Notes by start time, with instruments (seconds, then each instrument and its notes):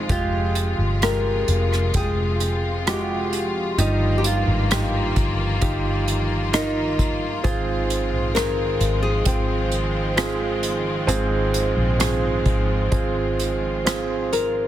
Already playing: string section F3 G#3 F4, grand piano G#3 C4 F4
0.09 fingered electric bass F1, string section C3, grand piano G#3 F4 G4, nylon-string guitar F4, kick, closed hi-hat
0.55 closed hi-hat
0.78 fingered electric bass G1
1.02 grand piano G#3 F4 G4, nylon-string guitar A#4, cross-stick, closed hi-hat
1.48 fingered electric bass F1, closed hi-hat
1.73 cross-stick
1.94 fingered electric bass F1, grand piano G#3 F4 G5, nylon-string guitar G#4, kick, closed hi-hat
2.40 closed hi-hat
2.86 grand piano G#3 F4 F#4, nylon-string guitar G4, cross-stick, closed hi-hat
2.94 grand piano G4
3.33 closed hi-hat
3.78 fingered electric bass G1, grand piano G2 D#4 F4 G4, string section D#3 A#3, nylon-string guitar D#4, closed hi-hat
4.18 nylon-string guitar G4
4.24 nylon-string guitar F4, closed hi-hat
4.48 fingered electric bass G#1
4.70 grand piano D#4 F4 G4, cross-stick, closed hi-hat
5.16 fingered electric bass G1, kick, closed hi-hat
5.61 fingered electric bass G1, grand piano D#4 F4 G4, kick, closed hi-hat
6.08 closed hi-hat
6.52 grand piano D#4 F4 A#4, nylon-string guitar D#4, cross-stick, closed hi-hat
6.99 kick, closed hi-hat
7.44 fingered electric bass G#1, grand piano G#2 C4 F4 G#4, string section F3 G#3 C4, nylon-string guitar F4, kick, closed hi-hat
7.90 closed hi-hat
8.13 fingered electric bass A#1
8.35 grand piano C4 F4 G#4, nylon-string guitar A#4, cross-stick, closed hi-hat
8.81 fingered electric bass G#1, closed hi-hat
9.03 nylon-string guitar G#4
9.25 fingered electric bass G#1, grand piano C4 F4 G5, kick, closed hi-hat
9.72 closed hi-hat
10.16 grand piano C4 F4 G#4, cross-stick, closed hi-hat
10.63 closed hi-hat
11.07 fingered electric bass G#1, grand piano G#2 C4 F4 G#4, closed hi-hat
11.54 closed hi-hat
11.77 fingered electric bass A#1
11.99 grand piano C4 F4 G#4, cross-stick, closed hi-hat
12.46 fingered electric bass G#1, kick, closed hi-hat
12.91 fingered electric bass G#1, grand piano C4 F4 G#4, kick, closed hi-hat
13.39 closed hi-hat
13.85 grand piano C4 F4 G#4, cross-stick, closed hi-hat
14.33 nylon-string guitar A#4, closed hi-hat